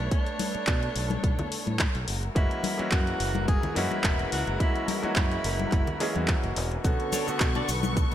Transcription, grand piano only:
0, 0, Header, 1, 2, 480
1, 0, Start_track
1, 0, Tempo, 560748
1, 100, Time_signature, 4, 2, 24, 8
1, 6974, End_track
2, 0, Start_track
2, 0, Title_t, "Grand piano"
2, 0, Program_c, 0, 0
2, 2013, Note_on_c, 0, 52, 79
2, 2015, Note_on_c, 0, 56, 75
2, 2017, Note_on_c, 0, 58, 72
2, 2020, Note_on_c, 0, 61, 70
2, 2023, Note_on_c, 0, 66, 86
2, 2355, Note_off_c, 0, 52, 0
2, 2356, Note_off_c, 0, 56, 0
2, 2357, Note_off_c, 0, 58, 0
2, 2358, Note_off_c, 0, 61, 0
2, 2360, Note_off_c, 0, 66, 0
2, 2379, Note_on_c, 0, 52, 80
2, 2383, Note_on_c, 0, 56, 75
2, 2388, Note_on_c, 0, 58, 75
2, 2391, Note_on_c, 0, 61, 77
2, 2396, Note_on_c, 0, 66, 89
2, 3188, Note_off_c, 0, 52, 0
2, 3190, Note_off_c, 0, 56, 0
2, 3193, Note_off_c, 0, 58, 0
2, 3194, Note_off_c, 0, 61, 0
2, 3197, Note_off_c, 0, 66, 0
2, 3212, Note_on_c, 0, 52, 95
2, 3217, Note_on_c, 0, 56, 85
2, 3220, Note_on_c, 0, 58, 89
2, 3225, Note_on_c, 0, 61, 85
2, 3229, Note_on_c, 0, 66, 106
2, 3910, Note_off_c, 0, 52, 0
2, 3912, Note_off_c, 0, 56, 0
2, 3914, Note_off_c, 0, 58, 0
2, 3916, Note_off_c, 0, 61, 0
2, 3918, Note_off_c, 0, 66, 0
2, 3936, Note_on_c, 0, 52, 78
2, 3937, Note_on_c, 0, 56, 71
2, 3941, Note_on_c, 0, 58, 71
2, 3942, Note_on_c, 0, 61, 71
2, 3944, Note_on_c, 0, 66, 85
2, 4276, Note_off_c, 0, 52, 0
2, 4277, Note_off_c, 0, 56, 0
2, 4279, Note_off_c, 0, 58, 0
2, 4279, Note_off_c, 0, 61, 0
2, 4280, Note_off_c, 0, 66, 0
2, 4302, Note_on_c, 0, 52, 82
2, 4306, Note_on_c, 0, 56, 74
2, 4310, Note_on_c, 0, 58, 75
2, 4314, Note_on_c, 0, 61, 75
2, 4319, Note_on_c, 0, 66, 89
2, 5110, Note_off_c, 0, 52, 0
2, 5112, Note_off_c, 0, 56, 0
2, 5114, Note_off_c, 0, 58, 0
2, 5116, Note_off_c, 0, 61, 0
2, 5118, Note_off_c, 0, 66, 0
2, 5137, Note_on_c, 0, 52, 90
2, 5138, Note_on_c, 0, 56, 80
2, 5141, Note_on_c, 0, 58, 82
2, 5142, Note_on_c, 0, 61, 81
2, 5144, Note_on_c, 0, 68, 101
2, 5237, Note_off_c, 0, 52, 0
2, 5237, Note_off_c, 0, 56, 0
2, 5239, Note_off_c, 0, 58, 0
2, 5239, Note_off_c, 0, 61, 0
2, 5241, Note_off_c, 0, 68, 0
2, 5260, Note_on_c, 0, 52, 77
2, 5264, Note_on_c, 0, 56, 70
2, 5269, Note_on_c, 0, 58, 71
2, 5274, Note_on_c, 0, 61, 69
2, 5277, Note_on_c, 0, 66, 85
2, 5829, Note_off_c, 0, 52, 0
2, 5831, Note_off_c, 0, 56, 0
2, 5833, Note_off_c, 0, 58, 0
2, 5836, Note_off_c, 0, 61, 0
2, 5837, Note_off_c, 0, 66, 0
2, 5856, Note_on_c, 0, 50, 79
2, 5859, Note_on_c, 0, 57, 72
2, 5860, Note_on_c, 0, 59, 72
2, 5863, Note_on_c, 0, 61, 69
2, 5864, Note_on_c, 0, 66, 88
2, 6196, Note_off_c, 0, 50, 0
2, 6198, Note_off_c, 0, 57, 0
2, 6198, Note_off_c, 0, 59, 0
2, 6200, Note_off_c, 0, 61, 0
2, 6200, Note_off_c, 0, 66, 0
2, 6220, Note_on_c, 0, 50, 81
2, 6224, Note_on_c, 0, 57, 75
2, 6230, Note_on_c, 0, 59, 75
2, 6237, Note_on_c, 0, 66, 92
2, 6974, Note_off_c, 0, 50, 0
2, 6974, Note_off_c, 0, 57, 0
2, 6974, Note_off_c, 0, 59, 0
2, 6974, Note_off_c, 0, 66, 0
2, 6974, End_track
0, 0, End_of_file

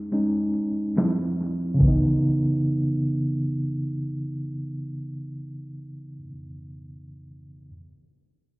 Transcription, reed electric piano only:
0, 0, Header, 1, 2, 480
1, 0, Start_track
1, 0, Key_signature, 4, "minor"
1, 0, Tempo, 845070
1, 1024, Time_signature, 4, 2, 24, 8
1, 4883, End_track
2, 0, Start_track
2, 0, Title_t, "Reed electric piano"
2, 0, Program_c, 0, 4
2, 0, Control_c, 0, 64, 127
2, 0, Note_on_c, 0, 56, 53
2, 0, Note_on_c, 0, 61, 46
2, 0, Note_on_c, 0, 63, 55
2, 0, Note_on_c, 0, 68, 91
2, 61, Note_off_c, 0, 56, 0
2, 64, Note_off_c, 0, 61, 0
2, 67, Note_on_c, 0, 56, 47
2, 68, Note_off_c, 0, 63, 0
2, 71, Note_on_c, 0, 61, 40
2, 75, Note_on_c, 0, 63, 51
2, 283, Note_off_c, 0, 56, 0
2, 285, Note_off_c, 0, 61, 0
2, 287, Note_off_c, 0, 63, 0
2, 521, Note_off_c, 0, 68, 0
2, 547, Note_on_c, 0, 53, 48
2, 549, Note_on_c, 0, 60, 47
2, 551, Control_c, 0, 64, 0
2, 552, Note_on_c, 0, 64, 52
2, 642, Control_c, 0, 64, 127
2, 989, Note_on_c, 0, 49, 74
2, 1003, Note_off_c, 0, 53, 0
2, 1004, Note_off_c, 0, 60, 0
2, 1005, Note_off_c, 0, 64, 0
2, 1011, Note_on_c, 0, 52, 71
2, 1033, Control_c, 0, 64, 0
2, 1040, Note_on_c, 0, 59, 64
2, 1065, Note_on_c, 0, 63, 77
2, 1146, Control_c, 0, 64, 127
2, 3506, Note_off_c, 0, 49, 0
2, 3529, Note_off_c, 0, 52, 0
2, 3557, Note_off_c, 0, 59, 0
2, 3582, Note_off_c, 0, 63, 0
2, 4372, Control_c, 0, 64, 0
2, 4883, End_track
0, 0, End_of_file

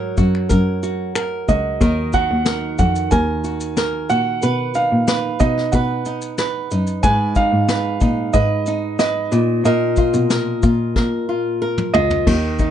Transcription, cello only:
0, 0, Header, 1, 2, 480
1, 0, Start_track
1, 0, Tempo, 653595
1, 1331, Time_signature, 4, 2, 24, 8
1, 9332, End_track
2, 0, Start_track
2, 0, Title_t, "Cello"
2, 0, Program_c, 0, 42
2, 0, Note_on_c, 0, 44, 78
2, 101, Note_off_c, 0, 44, 0
2, 129, Note_on_c, 0, 42, 89
2, 351, Note_off_c, 0, 42, 0
2, 374, Note_on_c, 0, 42, 90
2, 1063, Note_off_c, 0, 42, 0
2, 1090, Note_on_c, 0, 37, 84
2, 1312, Note_off_c, 0, 37, 0
2, 1330, Note_on_c, 0, 39, 107
2, 1662, Note_off_c, 0, 39, 0
2, 1694, Note_on_c, 0, 39, 86
2, 2024, Note_off_c, 0, 39, 0
2, 2053, Note_on_c, 0, 41, 84
2, 2273, Note_off_c, 0, 41, 0
2, 2292, Note_on_c, 0, 39, 96
2, 2982, Note_off_c, 0, 39, 0
2, 3010, Note_on_c, 0, 46, 77
2, 3231, Note_off_c, 0, 46, 0
2, 3252, Note_on_c, 0, 47, 88
2, 3583, Note_off_c, 0, 47, 0
2, 3611, Note_on_c, 0, 46, 86
2, 3942, Note_off_c, 0, 46, 0
2, 3968, Note_on_c, 0, 47, 95
2, 4190, Note_off_c, 0, 47, 0
2, 4209, Note_on_c, 0, 47, 98
2, 4900, Note_off_c, 0, 47, 0
2, 4930, Note_on_c, 0, 42, 78
2, 5151, Note_off_c, 0, 42, 0
2, 5169, Note_on_c, 0, 44, 92
2, 5501, Note_off_c, 0, 44, 0
2, 5524, Note_on_c, 0, 44, 88
2, 5858, Note_off_c, 0, 44, 0
2, 5887, Note_on_c, 0, 46, 84
2, 6110, Note_off_c, 0, 46, 0
2, 6126, Note_on_c, 0, 44, 97
2, 6839, Note_off_c, 0, 44, 0
2, 6843, Note_on_c, 0, 46, 95
2, 7067, Note_off_c, 0, 46, 0
2, 7082, Note_on_c, 0, 46, 97
2, 7416, Note_off_c, 0, 46, 0
2, 7445, Note_on_c, 0, 47, 86
2, 7778, Note_off_c, 0, 47, 0
2, 7810, Note_on_c, 0, 46, 98
2, 8030, Note_off_c, 0, 46, 0
2, 8049, Note_on_c, 0, 46, 89
2, 8739, Note_off_c, 0, 46, 0
2, 8767, Note_on_c, 0, 37, 93
2, 8988, Note_off_c, 0, 37, 0
2, 9011, Note_on_c, 0, 39, 105
2, 9332, Note_off_c, 0, 39, 0
2, 9332, End_track
0, 0, End_of_file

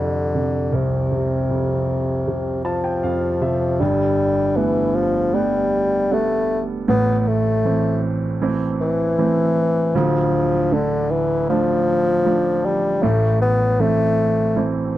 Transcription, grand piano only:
0, 0, Header, 1, 2, 480
1, 0, Start_track
1, 0, Tempo, 769231
1, 452, Time_signature, 4, 2, 24, 8
1, 9346, End_track
2, 0, Start_track
2, 0, Title_t, "Grand piano"
2, 0, Program_c, 0, 0
2, 0, Control_c, 0, 64, 127
2, 0, Note_on_c, 0, 41, 46
2, 0, Note_on_c, 0, 48, 49
2, 208, Note_off_c, 0, 48, 0
2, 217, Note_on_c, 0, 48, 43
2, 451, Note_on_c, 0, 36, 55
2, 687, Note_off_c, 0, 48, 0
2, 697, Note_on_c, 0, 48, 40
2, 908, Note_off_c, 0, 41, 0
2, 939, Note_on_c, 0, 41, 43
2, 1410, Note_off_c, 0, 48, 0
2, 1419, Note_on_c, 0, 48, 44
2, 1652, Note_on_c, 0, 81, 56
2, 1764, Note_off_c, 0, 81, 0
2, 1772, Note_on_c, 0, 79, 51
2, 1871, Note_off_c, 0, 41, 0
2, 1884, Note_off_c, 0, 79, 0
2, 1893, Note_on_c, 0, 77, 58
2, 1895, Note_on_c, 0, 41, 45
2, 2116, Note_off_c, 0, 77, 0
2, 2120, Note_off_c, 0, 48, 0
2, 2130, Note_on_c, 0, 48, 45
2, 2133, Note_on_c, 0, 76, 51
2, 2347, Note_off_c, 0, 36, 0
2, 2356, Note_off_c, 0, 76, 0
2, 2359, Note_off_c, 0, 41, 0
2, 2364, Note_off_c, 0, 48, 0
2, 2371, Note_on_c, 0, 31, 58
2, 2373, Note_on_c, 0, 43, 64
2, 2381, Control_c, 0, 64, 0
2, 2491, Control_c, 0, 64, 127
2, 2847, Note_on_c, 0, 55, 48
2, 2850, Note_on_c, 0, 57, 41
2, 2851, Note_on_c, 0, 59, 50
2, 3315, Note_off_c, 0, 55, 0
2, 3317, Note_off_c, 0, 57, 0
2, 3317, Note_off_c, 0, 59, 0
2, 3329, Note_on_c, 0, 55, 50
2, 3330, Note_on_c, 0, 57, 43
2, 3333, Note_on_c, 0, 59, 56
2, 3796, Note_off_c, 0, 55, 0
2, 3796, Note_off_c, 0, 57, 0
2, 3798, Note_off_c, 0, 59, 0
2, 3815, Note_on_c, 0, 55, 51
2, 3816, Note_on_c, 0, 57, 44
2, 3819, Note_on_c, 0, 59, 55
2, 4267, Note_off_c, 0, 31, 0
2, 4268, Note_off_c, 0, 43, 0
2, 4279, Note_off_c, 0, 55, 0
2, 4280, Note_off_c, 0, 57, 0
2, 4281, Note_off_c, 0, 59, 0
2, 4295, Note_on_c, 0, 45, 72
2, 4297, Note_on_c, 0, 33, 59
2, 4301, Control_c, 0, 64, 0
2, 4426, Control_c, 0, 64, 127
2, 4774, Note_on_c, 0, 52, 47
2, 4775, Note_on_c, 0, 57, 42
2, 4779, Note_on_c, 0, 60, 54
2, 5239, Note_off_c, 0, 52, 0
2, 5239, Note_off_c, 0, 57, 0
2, 5241, Note_off_c, 0, 60, 0
2, 5251, Note_on_c, 0, 52, 53
2, 5256, Note_on_c, 0, 57, 44
2, 5259, Note_on_c, 0, 60, 54
2, 5717, Note_off_c, 0, 52, 0
2, 5720, Note_off_c, 0, 57, 0
2, 5721, Note_off_c, 0, 60, 0
2, 5731, Note_on_c, 0, 52, 50
2, 5735, Note_on_c, 0, 57, 47
2, 5736, Note_on_c, 0, 60, 54
2, 6188, Note_off_c, 0, 45, 0
2, 6190, Note_off_c, 0, 33, 0
2, 6197, Note_off_c, 0, 52, 0
2, 6199, Note_off_c, 0, 57, 0
2, 6200, Note_off_c, 0, 60, 0
2, 6210, Note_on_c, 0, 26, 65
2, 6210, Note_on_c, 0, 38, 74
2, 6220, Control_c, 0, 64, 0
2, 6319, Control_c, 0, 64, 127
2, 6688, Note_on_c, 0, 50, 48
2, 6689, Note_on_c, 0, 57, 43
2, 6693, Note_on_c, 0, 62, 51
2, 7156, Note_off_c, 0, 50, 0
2, 7156, Note_off_c, 0, 57, 0
2, 7158, Note_off_c, 0, 62, 0
2, 7173, Note_on_c, 0, 53, 49
2, 7174, Note_on_c, 0, 57, 45
2, 7176, Note_on_c, 0, 62, 57
2, 7636, Note_off_c, 0, 53, 0
2, 7638, Note_off_c, 0, 57, 0
2, 7640, Note_off_c, 0, 62, 0
2, 7646, Note_on_c, 0, 53, 50
2, 7648, Note_on_c, 0, 57, 45
2, 7650, Note_on_c, 0, 62, 52
2, 8106, Note_off_c, 0, 26, 0
2, 8106, Note_off_c, 0, 38, 0
2, 8114, Note_off_c, 0, 53, 0
2, 8115, Note_off_c, 0, 57, 0
2, 8117, Note_off_c, 0, 62, 0
2, 8130, Note_on_c, 0, 45, 73
2, 8132, Note_on_c, 0, 33, 62
2, 8139, Control_c, 0, 64, 0
2, 8252, Control_c, 0, 64, 127
2, 8608, Note_on_c, 0, 52, 45
2, 8610, Note_on_c, 0, 57, 43
2, 8615, Note_on_c, 0, 60, 53
2, 9076, Note_off_c, 0, 52, 0
2, 9076, Note_off_c, 0, 57, 0
2, 9079, Note_off_c, 0, 60, 0
2, 9086, Note_on_c, 0, 52, 50
2, 9089, Note_on_c, 0, 57, 43
2, 9093, Note_on_c, 0, 60, 54
2, 9346, Note_off_c, 0, 33, 0
2, 9346, Note_off_c, 0, 45, 0
2, 9346, Note_off_c, 0, 52, 0
2, 9346, Note_off_c, 0, 57, 0
2, 9346, Note_off_c, 0, 60, 0
2, 9346, End_track
0, 0, End_of_file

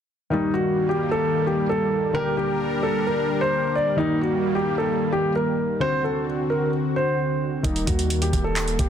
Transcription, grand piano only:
0, 0, Header, 1, 2, 480
1, 0, Start_track
1, 0, Tempo, 458015
1, 332, Time_signature, 4, 2, 24, 8
1, 9317, End_track
2, 0, Start_track
2, 0, Title_t, "Grand piano"
2, 0, Program_c, 0, 0
2, 329, Note_on_c, 0, 63, 79
2, 533, Note_off_c, 0, 63, 0
2, 564, Note_on_c, 0, 66, 81
2, 906, Note_off_c, 0, 66, 0
2, 932, Note_on_c, 0, 67, 75
2, 1135, Note_off_c, 0, 67, 0
2, 1168, Note_on_c, 0, 69, 88
2, 1508, Note_off_c, 0, 69, 0
2, 1536, Note_on_c, 0, 67, 74
2, 1737, Note_off_c, 0, 67, 0
2, 1775, Note_on_c, 0, 69, 80
2, 2225, Note_off_c, 0, 69, 0
2, 2250, Note_on_c, 0, 70, 114
2, 2454, Note_off_c, 0, 70, 0
2, 2485, Note_on_c, 0, 67, 80
2, 2691, Note_off_c, 0, 67, 0
2, 2965, Note_on_c, 0, 69, 85
2, 3171, Note_off_c, 0, 69, 0
2, 3212, Note_on_c, 0, 70, 71
2, 3550, Note_off_c, 0, 70, 0
2, 3574, Note_on_c, 0, 72, 87
2, 3912, Note_off_c, 0, 72, 0
2, 3934, Note_on_c, 0, 74, 78
2, 4137, Note_off_c, 0, 74, 0
2, 4168, Note_on_c, 0, 63, 90
2, 4373, Note_off_c, 0, 63, 0
2, 4416, Note_on_c, 0, 66, 80
2, 4752, Note_off_c, 0, 66, 0
2, 4769, Note_on_c, 0, 67, 79
2, 4973, Note_off_c, 0, 67, 0
2, 5009, Note_on_c, 0, 69, 78
2, 5349, Note_off_c, 0, 69, 0
2, 5370, Note_on_c, 0, 67, 83
2, 5574, Note_off_c, 0, 67, 0
2, 5612, Note_on_c, 0, 70, 81
2, 6063, Note_off_c, 0, 70, 0
2, 6090, Note_on_c, 0, 72, 105
2, 6294, Note_off_c, 0, 72, 0
2, 6333, Note_on_c, 0, 69, 77
2, 6536, Note_off_c, 0, 69, 0
2, 6811, Note_on_c, 0, 70, 73
2, 7015, Note_off_c, 0, 70, 0
2, 7297, Note_on_c, 0, 72, 77
2, 7972, Note_off_c, 0, 72, 0
2, 8008, Note_on_c, 0, 63, 76
2, 8213, Note_off_c, 0, 63, 0
2, 8243, Note_on_c, 0, 66, 78
2, 8586, Note_off_c, 0, 66, 0
2, 8613, Note_on_c, 0, 67, 72
2, 8816, Note_off_c, 0, 67, 0
2, 8848, Note_on_c, 0, 69, 88
2, 9188, Note_off_c, 0, 69, 0
2, 9217, Note_on_c, 0, 67, 72
2, 9317, Note_off_c, 0, 67, 0
2, 9317, End_track
0, 0, End_of_file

